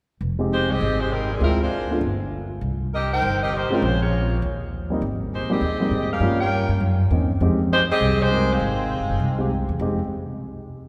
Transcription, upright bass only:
0.21 F1
0.69 C2
0.80 G#1
1.40 D2
2.01 G1
2.61 C2
3.22 G1
3.71 muted upright bass stroke
3.82 A#1
4.42 D#2
5.02 G#1
5.50 muted upright bass stroke
5.61 D#2
5.91 G#2
6.20 G2
6.69 G2
6.80 F#2
7.10 E2
7.40 F2
7.89 muted upright bass stroke
8.00 C2
8.60 G#1
9.00 G1
9.10 F#1
9.19 C2
9.69 E2
9.79 F1

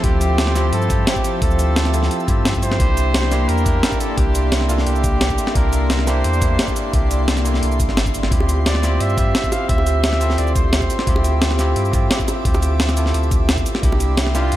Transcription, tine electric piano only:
Already playing: C4 E4 F4 G4 A4
0.02 C4 E4 F4 G4
0.55 C4 E4 F4 G4
0.88 C4 E4 F4 G4
1.40 C4 E4 F4 G4
1.93 C4 E4 F4 A4
2.26 C4 E4 F4 G4
2.78 A#3 D4 E4 G4
3.31 A#3 D4 E4 G4
3.65 A#3 D4 E4 G4
4.16 A#3 D4 E4 G4
4.68 A#3 D4 E4 A4
5.54 A#3 D4 E4 G4
6.06 A#3 D4 E4 G4
6.40 A#3 D4 E4 G4
6.92 A#3 D4 E4 G4
7.44 A#3 D4 E4 A4
8.30 C4 E4 F4 G4
8.82 C4 E4 F4 G4
9.16 C4 E4 F4 G4
9.68 C4 E4 F4 G4
10.19 C4 E4 F4 A4
11.06 C4 E4 F4 G4
11.58 C4 E4 F4 G4
11.92 C4 E4 F4 G4
12.44 C4 E4 F4 G4
12.95 C4 E4 F4 A4
13.82 A#3 D4 E4 G4
14.34 A#3 D4 E4 G4

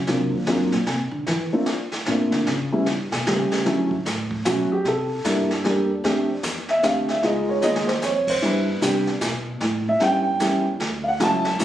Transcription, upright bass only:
0.08 C3
0.32 D#2
0.47 F#2
0.72 A#2
0.87 C3
1.11 D3
1.27 E3
2.08 A#2
2.32 D3
2.48 C#3
2.88 G2
3.12 B2
3.27 C#3
3.65 D3
4.05 A2
4.45 B2
4.70 muted upright bass stroke
4.85 C3
5.25 G2
5.64 E2
6.04 F2
6.43 E2
6.83 D2
7.22 C#2
7.62 D#2
8.01 F2
8.42 G2
8.81 C3
9.21 B2
9.61 A2
10.00 G2
10.40 E2
10.80 D2
11.20 C#2
11.59 B1

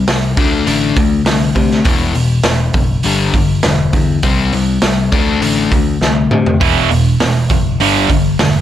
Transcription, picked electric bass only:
0.08 C2
0.37 D2
0.67 A1
0.97 D2
1.25 C2
1.55 C3
1.85 E1
2.13 E1
2.44 E1
2.74 F#1
3.04 G1
3.33 G1
3.64 E1
3.93 E2
4.24 C2
4.53 C2
4.83 C2
5.12 D2
5.41 A1
5.71 D2
6.01 C2
6.31 C3
6.61 E1
6.90 E1
7.21 E1
7.50 F#1
7.80 G1
8.10 G1
8.39 E1

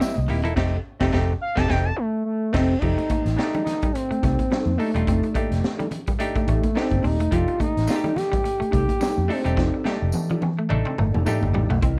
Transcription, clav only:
Already playing: A#3 C4 E4 G4
0.29 A#3 D#4 E4 G4
0.43 A#3 D#4 E4 A4
0.56 A3 C4 D#4 G4
1.00 A3 C4 D#4 G4
1.12 A3 C4 D#4 G4
1.55 A3 C4 D#4 G4
1.68 A3 C4 D#4 G4
2.53 A3 C4 D#4 G4
2.81 A3 C4 D#4 G4
3.37 G#3 D4 D#4 G4
3.44 A3
4.78 A3 D4 D#4 A4
4.94 A3 D4 D#4 F4
5.34 A3 D4 D#4 G4
6.19 A3 D4 D#4 G4
6.75 G#3 D4 D#4 G4
6.82 A3
7.31 A3 D4 D#4 G4
7.87 A3 D4 D#4 F4
7.96 G4
9.28 A3 D4 D#4 A4
9.44 A3 D4 D#4 G4
9.84 A3 D4 D#4 G4
10.69 A3 D4 D#4 A4
11.26 A3 D4 D#4 G4

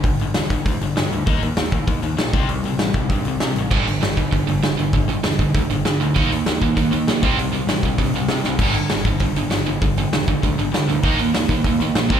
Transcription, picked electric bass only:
0.03 G1
0.20 G1
0.35 E1
0.50 G1
0.65 D2
0.80 G1
0.96 G2
1.11 D2
1.27 D#2
1.42 D#2
1.57 D#2
1.72 D#2
1.88 D#2
2.03 D#2
2.17 A#1
2.33 C2
2.49 C2
2.63 C2
2.77 A1
2.94 C2
3.09 G2
3.24 C2
3.41 C3
3.56 A1
3.71 G1
3.86 G1
4.02 G1
4.17 G1
4.32 G1
4.48 G1
4.63 G1
4.79 G1
4.93 G1
5.08 G1
5.23 E1
5.39 G1
5.55 D2
5.70 G1
5.85 G2
6.00 D2
6.16 D#2
6.31 D#2
6.46 D#2
6.62 D#2
6.77 D#2
6.90 D#2
7.06 B1
7.22 C2
7.37 C2
7.52 C2
7.66 A1
7.83 C2
7.98 G2
8.13 C2
8.28 C3
8.43 C2
8.58 G1
8.73 G1
8.90 G1
9.04 G1
9.20 G1
9.35 G1
9.50 G1
9.66 G1
9.81 G1
9.97 G1
10.13 E1
10.28 G1
10.44 D2
10.57 G1
10.73 G2
10.87 D2
11.03 D#2
11.19 D#2
11.35 D#2
11.49 D#2
11.64 D#2
11.79 D#2
11.94 A#1
12.10 C2

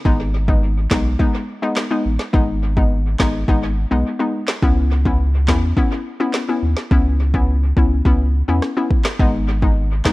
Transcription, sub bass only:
0.05 G#1
0.91 B1
2.05 A1
2.34 G#1
3.20 G#1
3.48 G#1
3.91 B1
4.63 C#2
5.48 E2
6.62 D#2
6.91 C#2
7.77 C#2
8.05 C#2
8.48 E2
9.19 G#1
10.05 B1

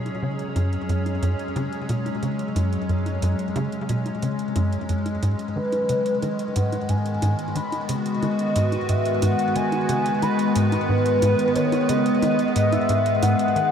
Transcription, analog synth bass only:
Already playing: B2
0.22 C#3
0.56 F#2
0.89 F#2
1.22 F#2
1.56 C#3
1.89 B2
2.23 C#3
2.56 F#2
2.89 F#2
3.22 F#2
3.56 C#3
3.89 B2
4.22 C#3
4.56 F#2
4.89 F#2
5.23 G#2
5.56 D#3
5.89 C#3
6.22 D#3
6.56 G#2
6.89 G#2
7.22 G#2
7.56 D#3
7.89 C#3
8.22 D#3
8.56 G#2
8.89 G#2
9.22 G#2
9.56 D#3
9.89 C#3
10.22 D#3
10.56 G#2
10.89 G#2
11.22 G#2
11.56 D#3
11.89 C#3
12.22 D#3
12.56 G#2
12.89 G#2
13.22 G#2
13.56 D#3

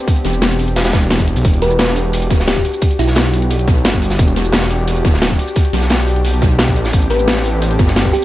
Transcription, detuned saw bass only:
0.25 E1
1.28 E1
1.36 B1
1.45 E1
2.31 D1
2.99 B1
3.85 G1
4.19 E1
5.05 D1
5.73 B1
6.42 B1
6.76 A1
6.93 A1
7.79 G1

